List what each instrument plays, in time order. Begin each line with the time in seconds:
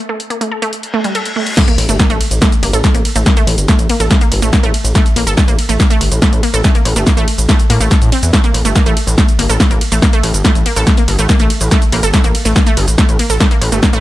0.09 synth arpeggio sound A3
0.20 closed hi-hat
0.30 synth arpeggio sound A#3, closed hi-hat
0.41 synth arpeggio sound A3, closed hi-hat
0.52 synth arpeggio sound A4
0.62 synth arpeggio sound A3, closed hi-hat
0.73 closed hi-hat, reverse cymbal
0.83 closed hi-hat
0.94 synth arpeggio sound A3
1.04 synth arpeggio sound G3, closed hi-hat
1.15 synth arpeggio sound A4, closed hi-hat
1.25 closed hi-hat
1.36 synth arpeggio sound A3
1.47 closed hi-hat
1.57 synth arpeggio sound A3, kick, snare, closed hi-hat, crash, impact, shaker
1.68 synth arpeggio sound A#3, closed hi-hat, shaker
1.78 analog synth bass A1, open hi-hat, ride
1.89 analog synth bass G1, synth arpeggio sound A3, closed hi-hat, shaker
1.99 synth arpeggio sound A#3, kick, snare, closed hi-hat, shaker
2.10 analog synth bass A1, synth arpeggio sound A3, closed hi-hat, shaker
2.21 open hi-hat, ride
2.31 analog synth bass A1, closed hi-hat, shaker
2.42 synth arpeggio sound A3, kick, snare, closed hi-hat, shaker
2.52 closed hi-hat, shaker
2.63 analog synth bass G1, synth arpeggio sound A#3, open hi-hat, ride
2.73 analog synth bass A1, synth arpeggio sound A4, closed hi-hat, shaker
2.84 synth arpeggio sound A3, kick, snare, closed hi-hat, shaker
2.94 analog synth bass A1, synth arpeggio sound A#3, closed hi-hat, shaker
3.05 open hi-hat, ride
3.16 analog synth bass A1, synth arpeggio sound A3, closed hi-hat, shaker
3.26 synth arpeggio sound A#3, kick, snare, closed hi-hat, shaker
3.37 synth arpeggio sound A3, closed hi-hat, shaker
3.47 analog synth bass A1, open hi-hat, ride
3.58 analog synth bass G1, closed hi-hat, shaker
3.68 synth arpeggio sound A3, kick, snare, closed hi-hat, shaker
3.79 analog synth bass A1, closed hi-hat, shaker
3.89 synth arpeggio sound A#3, open hi-hat, ride
4.00 analog synth bass A1, synth arpeggio sound A4, closed hi-hat, shaker
4.10 synth arpeggio sound A3, kick, snare, closed hi-hat, shaker
4.21 synth arpeggio sound A#3, closed hi-hat, shaker
4.32 analog synth bass G1, open hi-hat, ride
4.42 analog synth bass A1, synth arpeggio sound A3, closed hi-hat, shaker
4.53 synth arpeggio sound A#3, kick, snare, closed hi-hat, shaker
4.63 analog synth bass A1, synth arpeggio sound A3, closed hi-hat, shaker
4.74 open hi-hat, ride
4.84 analog synth bass A1, closed hi-hat, shaker
4.95 synth arpeggio sound A3, kick, snare, closed hi-hat, shaker
5.06 closed hi-hat, shaker
5.16 analog synth bass A1, synth arpeggio sound A#3, open hi-hat, ride
5.27 analog synth bass G1, synth arpeggio sound A4, closed hi-hat, shaker
5.37 synth arpeggio sound A3, kick, snare, closed hi-hat, shaker
5.48 analog synth bass A1, synth arpeggio sound A#3, closed hi-hat, shaker
5.59 open hi-hat, ride
5.69 analog synth bass A1, synth arpeggio sound A3, closed hi-hat, shaker
5.80 synth arpeggio sound A#3, kick, snare, closed hi-hat, shaker
5.90 synth arpeggio sound A3, closed hi-hat, shaker
6.01 analog synth bass G1, open hi-hat, ride
6.12 analog synth bass A1, closed hi-hat, shaker
6.22 synth arpeggio sound A3, kick, snare, closed hi-hat, shaker
6.33 analog synth bass A1, closed hi-hat, shaker
6.43 synth arpeggio sound A#3, open hi-hat, ride
6.54 analog synth bass A1, synth arpeggio sound A4, closed hi-hat, shaker
6.64 synth arpeggio sound A3, kick, snare, closed hi-hat, shaker
6.75 synth arpeggio sound A#3, closed hi-hat, shaker
6.85 analog synth bass A1, open hi-hat, ride
6.96 analog synth bass G1, synth arpeggio sound A3, closed hi-hat, shaker
7.06 synth arpeggio sound A#3, kick, snare, closed hi-hat, shaker
7.17 analog synth bass A1, synth arpeggio sound A3, closed hi-hat, shaker
7.28 open hi-hat, ride
7.38 analog synth bass A1, closed hi-hat, shaker
7.49 synth arpeggio sound A3, kick, snare, closed hi-hat, shaker
7.60 closed hi-hat, shaker
7.70 analog synth bass A2, synth arpeggio sound A#3, open hi-hat, ride
7.80 analog synth bass A1, synth arpeggio sound A3, closed hi-hat, shaker
7.91 synth arpeggio sound A4, kick, snare, closed hi-hat, shaker
8.02 analog synth bass A2, closed hi-hat, shaker
8.12 synth arpeggio sound C4, open hi-hat, ride
8.23 analog synth bass E2, closed hi-hat, shaker
8.33 synth arpeggio sound A3, kick, snare, closed hi-hat, shaker
8.44 synth arpeggio sound A#3, closed hi-hat, shaker
8.54 analog synth bass A1, open hi-hat, ride
8.65 analog synth bass G1, synth arpeggio sound A3, closed hi-hat, shaker
8.75 synth arpeggio sound A#3, kick, snare, closed hi-hat, shaker
8.86 analog synth bass A1, synth arpeggio sound A3, closed hi-hat, shaker
8.97 open hi-hat, ride
9.07 analog synth bass A1, closed hi-hat, shaker
9.18 synth arpeggio sound A3, kick, snare, closed hi-hat, shaker
9.29 closed hi-hat, shaker
9.39 analog synth bass G1, synth arpeggio sound A#3, open hi-hat, ride
9.50 analog synth bass A1, synth arpeggio sound A4, closed hi-hat, shaker
9.60 synth arpeggio sound A3, kick, snare, closed hi-hat, shaker
9.71 analog synth bass A1, synth arpeggio sound A#3, closed hi-hat, shaker
9.81 open hi-hat, ride
9.92 analog synth bass A1, synth arpeggio sound A3, closed hi-hat, shaker
10.02 synth arpeggio sound A#3, kick, snare, closed hi-hat, shaker
10.13 synth arpeggio sound A3, closed hi-hat, shaker
10.23 analog synth bass A1, open hi-hat, ride
10.34 analog synth bass G1, closed hi-hat, shaker
10.44 synth arpeggio sound A3, kick, snare, closed hi-hat, shaker
10.55 analog synth bass A1, closed hi-hat, shaker
10.66 synth arpeggio sound A#3, open hi-hat, ride
10.76 analog synth bass A1, synth arpeggio sound A4, closed hi-hat, shaker
10.87 synth arpeggio sound A3, kick, snare, closed hi-hat, shaker
10.97 synth arpeggio sound A#3, closed hi-hat, shaker
11.08 analog synth bass G1, open hi-hat, ride
11.19 analog synth bass A1, synth arpeggio sound A3, closed hi-hat, shaker
11.29 synth arpeggio sound A#3, kick, snare, closed hi-hat, shaker
11.40 analog synth bass A1, synth arpeggio sound A3, closed hi-hat, shaker
11.50 open hi-hat, ride
11.61 analog synth bass A1, closed hi-hat, shaker
11.71 synth arpeggio sound A3, kick, snare, closed hi-hat, shaker
11.82 closed hi-hat, shaker
11.92 analog synth bass A1, synth arpeggio sound A#3, open hi-hat, ride
12.03 analog synth bass G1, synth arpeggio sound A4, closed hi-hat, shaker
12.13 synth arpeggio sound A3, kick, snare, closed hi-hat, shaker
12.24 analog synth bass A1, synth arpeggio sound A#3, closed hi-hat, shaker
12.35 open hi-hat, ride
12.45 analog synth bass A1, synth arpeggio sound A3, closed hi-hat, shaker
12.56 synth arpeggio sound A#3, kick, snare, closed hi-hat, shaker
12.66 synth arpeggio sound A3, closed hi-hat, shaker
12.77 analog synth bass G1, open hi-hat, ride
12.88 analog synth bass A1, closed hi-hat, shaker
12.98 synth arpeggio sound A3, kick, snare, closed hi-hat, shaker
13.09 analog synth bass A1, closed hi-hat, shaker
13.19 synth arpeggio sound A#3, open hi-hat, ride
13.30 analog synth bass A1, synth arpeggio sound A4, closed hi-hat, shaker
13.40 synth arpeggio sound A3, kick, snare, closed hi-hat, shaker
13.51 synth arpeggio sound A#3, closed hi-hat, shaker
13.61 analog synth bass A1, open hi-hat, ride
13.72 analog synth bass G1, synth arpeggio sound A3, closed hi-hat, shaker
13.83 synth arpeggio sound A#3, kick, snare, closed hi-hat, shaker
13.93 analog synth bass A1, synth arpeggio sound A3, closed hi-hat, shaker